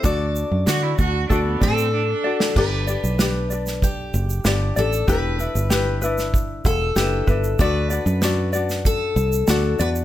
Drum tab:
CC |----------------|x---------------|----------------|----------------|
SH |x-x-x-x-x-xx----|--xxx-xxx-xxx-xx|x-xxx-xxx-x-x-xx|x-xxx-xxx-xxx-xx|
SD |----o----------o|----o--o----o---|----o--o----o---|----o--o----o---|
BD |o-----o-o-o-----|o-------o-------|o-------o-o---o-|o-------o-------|